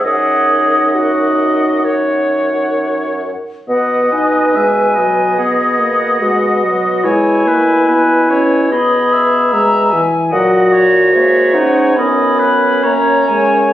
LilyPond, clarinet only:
\new Staff \with { instrumentName = "Clarinet" } { \time 4/4 \key b \major \tempo 4 = 71 gis'4 fis'2 r4 | b'2 gis'4 fis'4 | e'2 gis'4. r8 | fis'4. dis'8 cis'2 | }